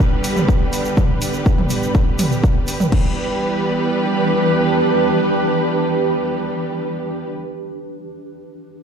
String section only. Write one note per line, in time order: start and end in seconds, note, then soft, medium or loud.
0.00 2.88 D3 medium
0.00 2.88 G3 medium
0.00 2.88 B3 medium
0.00 2.88 G4 medium
0.00 2.88 B4 medium
2.92 7.32 E3 medium
2.92 7.32 G3 medium
2.92 7.32 B3 medium
2.92 7.32 G4 medium
2.92 7.32 B4 medium